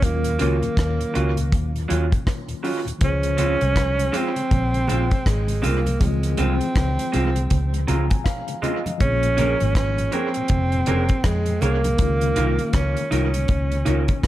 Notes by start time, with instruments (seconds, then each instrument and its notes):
0.00 fingered electric bass D#2, tine electric piano D#3 F#3 A#3, kick, closed hi-hat
0.04 alto saxophone A#3, tine electric piano C#4 F4
0.24 tonewheel organ D#2 A#2, closed hi-hat
0.39 fingered electric bass C#2, clean electric guitar F#3 C#4 F4, tonewheel organ F#3 C#4 F4, alto saxophone A#3, closed hi-hat
0.62 tonewheel organ D#2 A#2, closed hi-hat
0.77 fingered electric bass D#2, kick, cross-stick, closed hi-hat
1.00 tonewheel organ D#2 A#2, closed hi-hat
1.13 fingered electric bass C#2, tonewheel organ F#3 C#4 F4, clean electric guitar F#3 C#4 F4, closed hi-hat
1.36 tonewheel organ D#2 A#2, closed hi-hat
1.52 fingered electric bass D#2, kick, closed hi-hat
1.73 tonewheel organ D#2 A#2, closed hi-hat
1.88 fingered electric bass D#2, tonewheel organ F#3 C#4 F4, clean electric guitar F#3 C#4 F4, closed hi-hat
2.11 tonewheel organ D#2 A#2, muted clean electric guitar stroke, kick, closed hi-hat
2.27 kick, cross-stick, closed hi-hat
2.48 tonewheel organ D#2 A#2, closed hi-hat
2.63 tonewheel organ F#3 C#4 F4, clean electric guitar F#3 C#4 F4, open hi-hat
2.85 tonewheel organ D#2 A#2, muted clean electric guitar stroke, closed hi-hat
2.99 fingered electric bass C#2, tine electric piano F3 G#3 C5, kick, closed hi-hat, low conga
3.03 alto saxophone C#4, tine electric piano F4 G#4
3.23 tonewheel organ C#3 G#3, closed hi-hat
3.37 clean electric guitar G#3 C4 F4, tonewheel organ C4 C#4 F4, closed hi-hat, low conga
3.61 fingered electric bass C2, tonewheel organ C#3 G#3, closed hi-hat
3.76 kick, cross-stick, closed hi-hat, high conga
3.98 tonewheel organ C#3 G#3, closed hi-hat
4.12 clean electric guitar G#3 C4 F4, tonewheel organ C4 C#4 F4, alto saxophone C4, closed hi-hat, high conga
4.36 tonewheel organ C#3 G#3, closed hi-hat
4.51 fingered electric bass A#1, kick, closed hi-hat, low conga
4.74 tonewheel organ C#3 G#3, closed hi-hat
4.88 fingered electric bass A#1, clean electric guitar G#3 C4 F4, tonewheel organ C4 C#4 F4, closed hi-hat, low conga
5.10 tonewheel organ C#3 G#3, muted clean electric guitar stroke, kick, closed hi-hat
5.26 fingered electric bass G#1, alto saxophone G#3, kick, cross-stick, closed hi-hat
5.47 tonewheel organ C#3 G#3, closed hi-hat
5.62 fingered electric bass C2, clean electric guitar G#3 C4 F4, alto saxophone A#3, tonewheel organ C4 C#4 F4, closed hi-hat, low conga
5.85 tonewheel organ C#3 G#3, closed hi-hat, high conga
5.98 fingered electric bass C#2, tine electric piano E3 G#3 C4 F4, alto saxophone G#3, kick, closed hi-hat, low conga
6.04 tine electric piano F3 G#4
6.23 tonewheel organ C#3 G#3, closed hi-hat
6.37 fingered electric bass C2, clean electric guitar G#3 C4 F4, tonewheel organ C4 C#4 F4, alto saxophone C4, closed hi-hat, low conga
6.60 tonewheel organ C#3 G#3, closed hi-hat
6.76 fingered electric bass C#2, kick, cross-stick, closed hi-hat, high conga
6.98 tonewheel organ C#3 G#3, closed hi-hat
7.12 fingered electric bass C2, clean electric guitar G#3 C4 F4, tonewheel organ C4 C#4 F4, closed hi-hat, high conga
7.36 tonewheel organ C#3 G#3, closed hi-hat
7.50 fingered electric bass C#2, kick, closed hi-hat, low conga
7.73 tonewheel organ C#3 G#3, closed hi-hat
7.87 fingered electric bass C#2, clean electric guitar G#3 C4 F4, tonewheel organ C4 C#4 F4, tine electric piano A#5, closed hi-hat, low conga
8.10 tonewheel organ C#3 G#3, tine electric piano G#5, muted clean electric guitar stroke, kick, closed hi-hat
8.24 tine electric piano F5, kick, cross-stick, closed hi-hat
8.48 tonewheel organ C#3 G#3, closed hi-hat
8.62 clean electric guitar G#3 C4 F4, tonewheel organ C4 C#4 F4, tine electric piano D#5, closed hi-hat, low conga
8.85 tonewheel organ C#3 G#3, muted clean electric guitar stroke, closed hi-hat, high conga
8.98 fingered electric bass A#1, tine electric piano F3 G#3 A#3, alto saxophone C#4, kick, closed hi-hat, low conga
9.03 tine electric piano C4 G#4
9.09 tine electric piano F4
9.23 tonewheel organ A#2 F3, closed hi-hat
9.37 tonewheel organ A#3 C#4 G#4, clean electric guitar C#4 G#4 A#4, closed hi-hat, low conga
9.60 fingered electric bass G#1, tonewheel organ A#2 F3, closed hi-hat
9.75 alto saxophone C#4, kick, cross-stick, closed hi-hat, high conga
9.98 tonewheel organ A#2 F3, closed hi-hat
10.12 tonewheel organ A#3 C#4 G#4, alto saxophone C4, clean electric guitar C#4 G#4 A#4, closed hi-hat, high conga
10.34 tonewheel organ A#2 F3, closed hi-hat
10.48 fingered electric bass F1, kick, closed hi-hat, low conga
10.72 tonewheel organ A#2 F3, closed hi-hat
10.86 fingered electric bass F1, tonewheel organ A#3 C#4 G#4, clean electric guitar C#4 G#4 A#4, closed hi-hat, low conga
11.09 tonewheel organ A#2 F3, muted clean electric guitar stroke, kick, closed hi-hat
11.24 fingered electric bass F2, alto saxophone G#3, kick, cross-stick, closed hi-hat
11.46 tonewheel organ A#2 F3, closed hi-hat
11.61 fingered electric bass C2, tonewheel organ A#3 C#4 G#4, alto saxophone A#3, clean electric guitar C#4 G#4 A#4, closed hi-hat, low conga
11.84 tonewheel organ A#2 F3, closed hi-hat, high conga
11.96 fingered electric bass C#2, tine electric piano D#3 G#3 A#3, kick, closed hi-hat, low conga
12.01 tine electric piano C#4 F4
12.21 tonewheel organ C#3 G#3, closed hi-hat
12.36 fingered electric bass C2, tonewheel organ A#3 D#4 F4, clean electric guitar D#4 F4 A#4, closed hi-hat, low conga
12.59 tonewheel organ C#3 G#3, closed hi-hat
12.73 fingered electric bass C#2, alto saxophone C#4, kick, cross-stick, closed hi-hat, high conga
12.97 tonewheel organ C#3 G#3, closed hi-hat
13.11 fingered electric bass C2, tonewheel organ A#3 D#4 F4, alto saxophone C#4, clean electric guitar D#4 F4 A#4, closed hi-hat, high conga
13.34 tonewheel organ C#3 G#3, closed hi-hat
13.48 fingered electric bass C#2, kick, closed hi-hat, low conga
13.71 tonewheel organ C#3 G#3, closed hi-hat
13.85 fingered electric bass C#2, tonewheel organ A#3 D#4 F4, clean electric guitar D#4 F4 A#4, closed hi-hat, low conga
14.08 tonewheel organ C#3 G#3, muted clean electric guitar stroke, kick, closed hi-hat
14.23 kick, cross-stick, closed hi-hat